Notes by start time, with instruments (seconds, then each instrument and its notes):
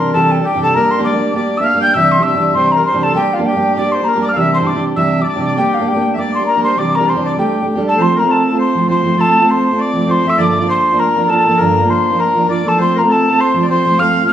Already playing: steel-string acoustic guitar C3 E3 G3 D4 G4, accordion A#4
0.00 tin whistle C6
0.13 steel-string acoustic guitar C3 E3 G3 D4 G4, accordion A4, tin whistle A5
0.31 tin whistle G5
0.38 steel-string acoustic guitar G3 D4 G4
0.45 accordion G4, tin whistle G5
0.54 steel-string acoustic guitar C3 E3 G3 D4 G4
0.62 accordion A4, tin whistle A5
0.74 steel-string acoustic guitar G3 A#3 D4 G4, accordion A#4, tin whistle A#5
0.91 tin whistle C6
0.99 steel-string acoustic guitar G3 A#3 D4 G4
1.04 accordion D5, tin whistle D6
1.14 steel-string acoustic guitar G3 A#3 D4 G4
1.34 steel-string acoustic guitar G3 A#3 D4 G4, accordion D5, tin whistle D6
1.58 steel-string acoustic guitar A#3 D4 G4, accordion E5, tin whistle E6
1.64 accordion F5, tin whistle F6
1.74 steel-string acoustic guitar G3 A#3 D4 G4
1.82 accordion G5, tin whistle G6
1.94 steel-string acoustic guitar C3 E3 G3 D4 G4, accordion E5, tin whistle E6
2.12 tin whistle C6
2.18 steel-string acoustic guitar C3 E3 G3 D4 G4
2.23 accordion E5, tin whistle E6
2.34 steel-string acoustic guitar C3 E3 G3 D4 G4
2.54 steel-string acoustic guitar C3 E3 G3 D4 G4, accordion C5, tin whistle C6
2.72 tin whistle A#5
2.76 steel-string acoustic guitar D4 G4, accordion A#4
2.81 steel-string acoustic guitar G3
2.86 accordion C5, tin whistle C6
2.92 steel-string acoustic guitar C3 E3 G3 D4 G4
3.03 accordion A4, tin whistle A5
3.14 steel-string acoustic guitar G3 A#3 D4 G4, accordion G4, tin whistle G5
3.33 accordion F4, tin whistle F5
3.39 steel-string acoustic guitar G3 A#3 D4 G4
3.46 accordion G4, tin whistle G5
3.55 steel-string acoustic guitar G3 A#3 D4 G4
3.76 steel-string acoustic guitar G3 A#3 D4 G4, accordion D5, tin whistle D6
3.92 accordion C5, tin whistle C6
4.01 steel-string acoustic guitar A#3 D4 G4, tin whistle A#5
4.07 accordion A#4
4.15 steel-string acoustic guitar G3 A#3 D4 G4
4.22 accordion D5, tin whistle D6
4.29 tin whistle F6
4.33 steel-string acoustic guitar C3 E3, accordion F5, tin whistle E6
4.37 steel-string acoustic guitar G3 D4 G4, accordion E5
4.54 accordion C5, tin whistle C6
4.60 steel-string acoustic guitar C3 E3 G3 D4 G4
4.67 accordion D5, tin whistle D6
4.74 steel-string acoustic guitar C3 E3 G3 D4 G4
4.96 steel-string acoustic guitar C3 E3 G3 D4 G4, accordion E5, tin whistle E6
5.20 steel-string acoustic guitar G3 D4 G4, accordion D5, tin whistle D6
5.27 accordion D5, tin whistle D6
5.36 steel-string acoustic guitar C3 E3 G3 D4 G4
5.44 accordion D5, tin whistle D6
5.57 steel-string acoustic guitar G3 A#3 D4 G4, accordion G4, tin whistle G5
5.74 tin whistle F5
5.80 steel-string acoustic guitar G3 A#3 D4 G4
5.88 accordion G4, tin whistle G5
5.94 steel-string acoustic guitar G3 A#3 D4 G4
6.14 steel-string acoustic guitar G3, accordion E5, tin whistle D6
6.18 steel-string acoustic guitar A#3 D4 G4, accordion D5
6.35 tin whistle C6
6.39 steel-string acoustic guitar A#3 D4 G4
6.46 accordion A#4, tin whistle A#5
6.56 steel-string acoustic guitar G3 A#3 D4 G4
6.64 accordion C5, tin whistle C6
6.77 steel-string acoustic guitar C3 E3 G3 D4 G4, accordion D5, tin whistle D6
6.95 accordion A#4, tin whistle A#5
7.00 steel-string acoustic guitar C3 E3 G3 D4 G4
7.06 accordion C5 D5, tin whistle C6
7.15 steel-string acoustic guitar C3 E3 G3 D4 G4
7.25 accordion D5, tin whistle D6
7.37 steel-string acoustic guitar G3 A3 D4 G4, accordion G4, tin whistle G5
7.61 steel-string acoustic guitar A3 D4 G4
7.76 steel-string acoustic guitar G3 A3 D4 G4
7.87 accordion A4, tin whistle A5
7.98 steel-string acoustic guitar F3 A3 C4 F4, accordion C5
8.02 tin whistle C6
8.16 accordion A#4, tin whistle A#5
8.21 steel-string acoustic guitar A3 C4 F4
8.30 accordion A4, tin whistle A5
8.52 steel-string acoustic guitar A3 C4 F4
8.58 accordion C5, tin whistle C6
8.75 steel-string acoustic guitar F3 A3 C4 F4
8.87 steel-string acoustic guitar F3 A3 C4 F4, accordion C5, tin whistle C6
9.03 steel-string acoustic guitar F3 A3 C4 F4
9.16 steel-string acoustic guitar F3 A3 C4 F4, accordion A4
9.21 tin whistle A5
9.39 steel-string acoustic guitar A3 C4 F4
9.48 accordion C5, tin whistle C6
9.70 steel-string acoustic guitar A3 C4 F4
9.78 accordion D5, tin whistle D6
9.94 steel-string acoustic guitar F3 A3 C4 F4
10.06 steel-string acoustic guitar F3 A3 C4 F4, accordion C5
10.11 tin whistle C6
10.25 steel-string acoustic guitar F3 A3 C4 F4, accordion E5
10.30 tin whistle E6
10.37 steel-string acoustic guitar G2 D3 F3 A#3 D4 F4, accordion D5, tin whistle D6
10.50 accordion D5
10.60 steel-string acoustic guitar D4 F4, accordion D5
10.64 steel-string acoustic guitar F3 A#3
10.69 accordion C5, tin whistle C6
10.92 steel-string acoustic guitar F3 A#3 D4 F4
10.99 accordion A#4, tin whistle A#5
11.16 steel-string acoustic guitar F3 A#3 D4 F4
11.27 steel-string acoustic guitar F3 A#3, accordion A4, tin whistle A5
11.31 steel-string acoustic guitar D4 F4
11.37 accordion A4
11.47 steel-string acoustic guitar F3 A#3 D4 F4, accordion A4
11.57 steel-string acoustic guitar G2 D3 F3 A#3, accordion A#4, tin whistle A#5
11.61 steel-string acoustic guitar D4 F4
11.82 steel-string acoustic guitar F3 A#3 D4 F4
11.89 accordion C5, tin whistle C6
12.11 steel-string acoustic guitar F3 A#3 D4 F4
12.19 accordion A#4, tin whistle A#5
12.35 steel-string acoustic guitar F3 A#3 D4 F4
12.47 steel-string acoustic guitar F3 A#3 D4 F4, accordion D5, tin whistle D6
12.64 steel-string acoustic guitar F3 A#3 D4 F4, accordion A4
12.68 tin whistle A5
12.78 steel-string acoustic guitar F3 A3 C4 F4, accordion C5, tin whistle C6
12.96 accordion A#4, tin whistle A#5
13.00 steel-string acoustic guitar A3 C4 F4
13.09 accordion A4, tin whistle A5
13.30 steel-string acoustic guitar A3 C4 F4
13.39 accordion C5, tin whistle C6
13.54 steel-string acoustic guitar F3 A3 C4 F4
13.63 accordion D5
13.68 steel-string acoustic guitar F3 A3 C4 F4, accordion C5, tin whistle C6
13.86 steel-string acoustic guitar F3 A3 C4 F4
13.98 steel-string acoustic guitar F3 A3 C4 F4, accordion F5, tin whistle F6
14.22 steel-string acoustic guitar A3 C4 F4
14.27 tin whistle F6